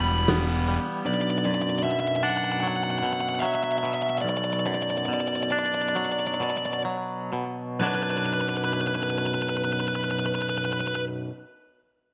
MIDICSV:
0, 0, Header, 1, 6, 480
1, 0, Start_track
1, 0, Key_signature, 2, "minor"
1, 0, Tempo, 784314
1, 646, Time_signature, 4, 2, 24, 8
1, 2094, Tempo, 831025
1, 3054, Tempo, 872093
1, 3534, Tempo, 925926
1, 4494, Tempo, 969305
1, 6639, End_track
2, 0, Start_track
2, 0, Title_t, "Lead electric guitar"
2, 0, Program_c, 0, 29
2, 2, Note_on_c, 0, 83, 88
2, 47, Note_off_c, 0, 83, 0
2, 50, Note_on_c, 0, 83, 74
2, 99, Note_off_c, 0, 83, 0
2, 110, Note_on_c, 0, 83, 86
2, 159, Note_off_c, 0, 83, 0
2, 650, Note_on_c, 0, 74, 94
2, 695, Note_off_c, 0, 74, 0
2, 697, Note_on_c, 0, 74, 73
2, 740, Note_off_c, 0, 74, 0
2, 742, Note_on_c, 0, 74, 93
2, 791, Note_off_c, 0, 74, 0
2, 797, Note_on_c, 0, 74, 80
2, 843, Note_off_c, 0, 74, 0
2, 845, Note_on_c, 0, 74, 87
2, 885, Note_off_c, 0, 74, 0
2, 888, Note_on_c, 0, 74, 85
2, 937, Note_off_c, 0, 74, 0
2, 946, Note_on_c, 0, 74, 92
2, 988, Note_off_c, 0, 74, 0
2, 991, Note_on_c, 0, 74, 81
2, 1035, Note_off_c, 0, 74, 0
2, 1038, Note_on_c, 0, 74, 84
2, 1087, Note_off_c, 0, 74, 0
2, 1094, Note_on_c, 0, 74, 70
2, 1118, Note_off_c, 0, 74, 0
2, 1120, Note_on_c, 0, 76, 103
2, 1168, Note_off_c, 0, 76, 0
2, 1170, Note_on_c, 0, 76, 72
2, 1220, Note_off_c, 0, 76, 0
2, 1224, Note_on_c, 0, 76, 91
2, 1268, Note_off_c, 0, 76, 0
2, 1271, Note_on_c, 0, 76, 79
2, 1320, Note_off_c, 0, 76, 0
2, 1323, Note_on_c, 0, 76, 84
2, 1364, Note_on_c, 0, 78, 107
2, 1372, Note_off_c, 0, 76, 0
2, 1403, Note_off_c, 0, 78, 0
2, 1405, Note_on_c, 0, 78, 77
2, 1449, Note_off_c, 0, 78, 0
2, 1452, Note_on_c, 0, 78, 89
2, 1493, Note_off_c, 0, 78, 0
2, 1495, Note_on_c, 0, 78, 82
2, 1539, Note_off_c, 0, 78, 0
2, 1541, Note_on_c, 0, 78, 86
2, 1586, Note_off_c, 0, 78, 0
2, 1593, Note_on_c, 0, 78, 119
2, 1635, Note_off_c, 0, 78, 0
2, 1638, Note_on_c, 0, 78, 85
2, 1684, Note_off_c, 0, 78, 0
2, 1690, Note_on_c, 0, 78, 107
2, 1732, Note_off_c, 0, 78, 0
2, 1735, Note_on_c, 0, 78, 92
2, 1775, Note_off_c, 0, 78, 0
2, 1778, Note_on_c, 0, 78, 112
2, 1824, Note_off_c, 0, 78, 0
2, 1827, Note_on_c, 0, 78, 91
2, 1871, Note_off_c, 0, 78, 0
2, 1873, Note_on_c, 0, 78, 111
2, 1912, Note_off_c, 0, 78, 0
2, 1915, Note_on_c, 0, 78, 96
2, 1960, Note_off_c, 0, 78, 0
2, 1963, Note_on_c, 0, 78, 105
2, 2009, Note_off_c, 0, 78, 0
2, 2013, Note_on_c, 0, 78, 86
2, 2049, Note_off_c, 0, 78, 0
2, 2051, Note_on_c, 0, 78, 96
2, 2076, Note_on_c, 0, 76, 101
2, 2097, Note_off_c, 0, 78, 0
2, 2112, Note_off_c, 0, 76, 0
2, 2114, Note_on_c, 0, 76, 74
2, 2159, Note_off_c, 0, 76, 0
2, 2168, Note_on_c, 0, 76, 88
2, 2213, Note_off_c, 0, 76, 0
2, 2219, Note_on_c, 0, 76, 78
2, 2264, Note_off_c, 0, 76, 0
2, 2266, Note_on_c, 0, 76, 85
2, 2300, Note_off_c, 0, 76, 0
2, 2302, Note_on_c, 0, 76, 74
2, 2342, Note_off_c, 0, 76, 0
2, 2344, Note_on_c, 0, 76, 95
2, 2389, Note_off_c, 0, 76, 0
2, 2395, Note_on_c, 0, 76, 79
2, 2439, Note_off_c, 0, 76, 0
2, 2441, Note_on_c, 0, 76, 82
2, 2481, Note_off_c, 0, 76, 0
2, 2483, Note_on_c, 0, 76, 67
2, 2529, Note_off_c, 0, 76, 0
2, 2534, Note_on_c, 0, 76, 84
2, 2549, Note_off_c, 0, 76, 0
2, 2551, Note_on_c, 0, 74, 88
2, 2594, Note_off_c, 0, 74, 0
2, 2597, Note_on_c, 0, 74, 63
2, 2640, Note_off_c, 0, 74, 0
2, 2642, Note_on_c, 0, 74, 76
2, 2681, Note_off_c, 0, 74, 0
2, 2683, Note_on_c, 0, 74, 69
2, 2727, Note_off_c, 0, 74, 0
2, 2735, Note_on_c, 0, 74, 81
2, 2769, Note_off_c, 0, 74, 0
2, 2771, Note_on_c, 0, 74, 63
2, 2808, Note_off_c, 0, 74, 0
2, 2811, Note_on_c, 0, 74, 77
2, 2855, Note_off_c, 0, 74, 0
2, 2859, Note_on_c, 0, 74, 73
2, 2902, Note_off_c, 0, 74, 0
2, 2905, Note_on_c, 0, 74, 81
2, 2947, Note_off_c, 0, 74, 0
2, 2949, Note_on_c, 0, 74, 72
2, 2990, Note_off_c, 0, 74, 0
2, 2992, Note_on_c, 0, 74, 80
2, 3036, Note_off_c, 0, 74, 0
2, 3038, Note_on_c, 0, 74, 67
2, 3080, Note_off_c, 0, 74, 0
2, 3083, Note_on_c, 0, 74, 85
2, 3118, Note_off_c, 0, 74, 0
2, 3120, Note_on_c, 0, 74, 70
2, 3159, Note_off_c, 0, 74, 0
2, 3162, Note_on_c, 0, 74, 86
2, 3202, Note_off_c, 0, 74, 0
2, 3204, Note_on_c, 0, 74, 75
2, 3242, Note_off_c, 0, 74, 0
2, 3244, Note_on_c, 0, 74, 78
2, 3286, Note_off_c, 0, 74, 0
2, 3288, Note_on_c, 0, 74, 73
2, 3330, Note_off_c, 0, 74, 0
2, 3332, Note_on_c, 0, 74, 82
2, 3367, Note_off_c, 0, 74, 0
2, 3370, Note_on_c, 0, 74, 69
2, 3412, Note_off_c, 0, 74, 0
2, 3418, Note_on_c, 0, 74, 80
2, 3455, Note_off_c, 0, 74, 0
2, 3457, Note_on_c, 0, 74, 68
2, 3494, Note_off_c, 0, 74, 0
2, 3496, Note_on_c, 0, 74, 86
2, 3538, Note_off_c, 0, 74, 0
2, 3540, Note_on_c, 0, 74, 71
2, 3580, Note_off_c, 0, 74, 0
2, 3583, Note_on_c, 0, 74, 86
2, 3616, Note_off_c, 0, 74, 0
2, 3618, Note_on_c, 0, 74, 69
2, 3656, Note_off_c, 0, 74, 0
2, 3658, Note_on_c, 0, 74, 78
2, 3695, Note_off_c, 0, 74, 0
2, 3697, Note_on_c, 0, 74, 71
2, 3732, Note_off_c, 0, 74, 0
2, 3734, Note_on_c, 0, 74, 82
2, 3774, Note_off_c, 0, 74, 0
2, 3780, Note_on_c, 0, 74, 67
2, 3815, Note_off_c, 0, 74, 0
2, 3817, Note_on_c, 0, 74, 75
2, 3852, Note_off_c, 0, 74, 0
2, 3854, Note_on_c, 0, 74, 64
2, 3894, Note_off_c, 0, 74, 0
2, 3897, Note_on_c, 0, 74, 69
2, 3935, Note_off_c, 0, 74, 0
2, 3937, Note_on_c, 0, 74, 61
2, 3977, Note_off_c, 0, 74, 0
2, 4489, Note_on_c, 0, 71, 82
2, 4522, Note_off_c, 0, 71, 0
2, 4524, Note_on_c, 0, 71, 62
2, 4562, Note_off_c, 0, 71, 0
2, 4563, Note_on_c, 0, 71, 68
2, 4601, Note_off_c, 0, 71, 0
2, 4603, Note_on_c, 0, 71, 64
2, 4639, Note_off_c, 0, 71, 0
2, 4641, Note_on_c, 0, 71, 67
2, 4675, Note_off_c, 0, 71, 0
2, 4677, Note_on_c, 0, 71, 63
2, 4715, Note_off_c, 0, 71, 0
2, 4717, Note_on_c, 0, 71, 76
2, 4753, Note_off_c, 0, 71, 0
2, 4755, Note_on_c, 0, 71, 61
2, 4790, Note_off_c, 0, 71, 0
2, 4792, Note_on_c, 0, 71, 70
2, 4830, Note_off_c, 0, 71, 0
2, 4833, Note_on_c, 0, 71, 61
2, 4869, Note_off_c, 0, 71, 0
2, 4871, Note_on_c, 0, 71, 80
2, 4906, Note_off_c, 0, 71, 0
2, 4908, Note_on_c, 0, 71, 71
2, 4946, Note_off_c, 0, 71, 0
2, 4952, Note_on_c, 0, 71, 81
2, 4988, Note_off_c, 0, 71, 0
2, 4990, Note_on_c, 0, 71, 70
2, 5019, Note_off_c, 0, 71, 0
2, 5021, Note_on_c, 0, 71, 73
2, 5059, Note_off_c, 0, 71, 0
2, 5061, Note_on_c, 0, 71, 72
2, 5097, Note_off_c, 0, 71, 0
2, 5099, Note_on_c, 0, 71, 79
2, 5132, Note_off_c, 0, 71, 0
2, 5134, Note_on_c, 0, 71, 70
2, 5172, Note_off_c, 0, 71, 0
2, 5175, Note_on_c, 0, 71, 76
2, 5213, Note_off_c, 0, 71, 0
2, 5215, Note_on_c, 0, 71, 65
2, 5252, Note_off_c, 0, 71, 0
2, 5254, Note_on_c, 0, 71, 78
2, 5291, Note_off_c, 0, 71, 0
2, 5293, Note_on_c, 0, 71, 69
2, 5327, Note_off_c, 0, 71, 0
2, 5329, Note_on_c, 0, 71, 83
2, 5364, Note_off_c, 0, 71, 0
2, 5366, Note_on_c, 0, 71, 72
2, 5402, Note_off_c, 0, 71, 0
2, 5404, Note_on_c, 0, 71, 75
2, 5442, Note_off_c, 0, 71, 0
2, 5444, Note_on_c, 0, 71, 69
2, 5479, Note_off_c, 0, 71, 0
2, 5481, Note_on_c, 0, 71, 76
2, 5518, Note_off_c, 0, 71, 0
2, 5520, Note_on_c, 0, 71, 63
2, 5555, Note_off_c, 0, 71, 0
2, 5557, Note_on_c, 0, 71, 82
2, 5595, Note_off_c, 0, 71, 0
2, 5600, Note_on_c, 0, 71, 66
2, 5632, Note_off_c, 0, 71, 0
2, 5634, Note_on_c, 0, 71, 78
2, 5672, Note_off_c, 0, 71, 0
2, 5676, Note_on_c, 0, 71, 61
2, 5706, Note_off_c, 0, 71, 0
2, 5708, Note_on_c, 0, 71, 76
2, 5746, Note_off_c, 0, 71, 0
2, 5753, Note_on_c, 0, 71, 61
2, 5785, Note_off_c, 0, 71, 0
2, 5787, Note_on_c, 0, 71, 73
2, 5823, Note_off_c, 0, 71, 0
2, 5825, Note_on_c, 0, 71, 68
2, 5863, Note_off_c, 0, 71, 0
2, 5865, Note_on_c, 0, 71, 70
2, 5900, Note_off_c, 0, 71, 0
2, 5902, Note_on_c, 0, 71, 61
2, 5938, Note_off_c, 0, 71, 0
2, 5940, Note_on_c, 0, 71, 73
2, 5976, Note_off_c, 0, 71, 0
2, 5978, Note_on_c, 0, 71, 57
2, 6011, Note_off_c, 0, 71, 0
2, 6012, Note_on_c, 0, 71, 69
2, 6049, Note_off_c, 0, 71, 0
2, 6051, Note_on_c, 0, 71, 61
2, 6090, Note_off_c, 0, 71, 0
2, 6639, End_track
3, 0, Start_track
3, 0, Title_t, "Pedal steel guitar"
3, 0, Program_c, 1, 26
3, 0, Note_on_c, 1, 52, 75
3, 0, Note_on_c, 1, 59, 66
3, 0, Note_on_c, 1, 62, 65
3, 0, Note_on_c, 1, 67, 69
3, 0, Note_on_c, 1, 74, 80
3, 621, Note_off_c, 1, 52, 0
3, 623, Note_off_c, 1, 62, 0
3, 624, Note_off_c, 1, 67, 0
3, 642, Note_on_c, 1, 62, 71
3, 643, Note_on_c, 1, 54, 73
3, 645, Note_on_c, 1, 71, 66
3, 2540, Note_off_c, 1, 59, 0
3, 2544, Note_off_c, 1, 74, 0
3, 2547, Note_off_c, 1, 54, 0
3, 2547, Note_off_c, 1, 62, 0
3, 2549, Note_off_c, 1, 71, 0
3, 6639, End_track
4, 0, Start_track
4, 0, Title_t, "Clean electric guitar"
4, 0, Program_c, 2, 27
4, 0, Note_on_c, 2, 52, 70
4, 0, Note_on_c, 2, 55, 74
4, 0, Note_on_c, 2, 59, 74
4, 0, Note_on_c, 2, 64, 79
4, 172, Note_off_c, 2, 52, 0
4, 172, Note_off_c, 2, 59, 0
4, 175, Note_on_c, 2, 59, 76
4, 410, Note_off_c, 2, 55, 0
4, 417, Note_on_c, 2, 55, 69
4, 646, Note_off_c, 2, 64, 0
4, 650, Note_off_c, 2, 55, 0
4, 659, Note_on_c, 2, 35, 79
4, 890, Note_on_c, 2, 42, 76
4, 1126, Note_on_c, 2, 47, 73
4, 1365, Note_on_c, 2, 62, 86
4, 1608, Note_on_c, 2, 54, 74
4, 1844, Note_off_c, 2, 47, 0
4, 1852, Note_on_c, 2, 47, 72
4, 1854, Note_off_c, 2, 35, 0
4, 2086, Note_off_c, 2, 54, 0
4, 2093, Note_on_c, 2, 54, 79
4, 2097, Note_off_c, 2, 42, 0
4, 2304, Note_off_c, 2, 59, 0
4, 2323, Note_off_c, 2, 47, 0
4, 2330, Note_on_c, 2, 47, 73
4, 2570, Note_on_c, 2, 35, 78
4, 2808, Note_on_c, 2, 42, 74
4, 3046, Note_off_c, 2, 47, 0
4, 3053, Note_on_c, 2, 47, 70
4, 3291, Note_off_c, 2, 62, 0
4, 3292, Note_off_c, 2, 54, 0
4, 3294, Note_on_c, 2, 62, 82
4, 3533, Note_on_c, 2, 54, 77
4, 3759, Note_off_c, 2, 47, 0
4, 3766, Note_on_c, 2, 47, 74
4, 3767, Note_off_c, 2, 35, 0
4, 3991, Note_off_c, 2, 54, 0
4, 3997, Note_on_c, 2, 54, 77
4, 4003, Note_off_c, 2, 42, 0
4, 4238, Note_off_c, 2, 47, 0
4, 4244, Note_on_c, 2, 47, 74
4, 4489, Note_on_c, 2, 35, 96
4, 4491, Note_off_c, 2, 54, 0
4, 4492, Note_off_c, 2, 47, 0
4, 4494, Note_on_c, 2, 42, 101
4, 4495, Note_off_c, 2, 62, 0
4, 4498, Note_on_c, 2, 47, 94
4, 4503, Note_on_c, 2, 54, 93
4, 4507, Note_on_c, 2, 62, 114
4, 6222, Note_off_c, 2, 35, 0
4, 6227, Note_off_c, 2, 42, 0
4, 6231, Note_off_c, 2, 47, 0
4, 6236, Note_off_c, 2, 54, 0
4, 6240, Note_off_c, 2, 62, 0
4, 6639, End_track
5, 0, Start_track
5, 0, Title_t, "Fingered electric bass"
5, 0, Program_c, 3, 33
5, 0, Note_on_c, 3, 28, 110
5, 472, Note_off_c, 3, 28, 0
5, 6639, End_track
6, 0, Start_track
6, 0, Title_t, "Drums"
6, 173, Note_on_c, 9, 38, 124
6, 173, Note_on_c, 9, 49, 71
6, 234, Note_off_c, 9, 38, 0
6, 234, Note_off_c, 9, 49, 0
6, 6639, End_track
0, 0, End_of_file